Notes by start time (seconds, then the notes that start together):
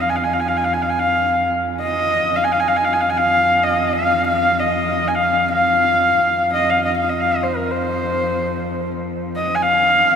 Already playing: F2
0.01 F5
0.09 G#5
0.16 F5
0.24 G#5
0.34 F5
0.40 G#5
0.48 F5
0.57 G#5
0.65 F5
0.74 G#5
0.82 F5
0.90 G#5
0.99 F5
1.82 D#5
2.28 F2
2.36 F5
2.44 G#5
2.52 F5
2.60 G#5
2.68 F5
2.77 G#5
2.85 F5
2.93 G#5
3.01 F5
3.10 G#5
3.17 F5
3.63 D#5
3.93 F5
4.28 F5
4.60 D#5
5.08 G#5
5.15 F5
5.52 F5
6.18 F2
6.54 D#5
6.70 F5
6.85 D#5
6.97 F5
7.10 D#5
7.21 F5
7.32 D#5
7.43 C5
7.56 A#4
7.71 C5
9.36 D#5
9.55 G#5
9.63 F5
10.08 F2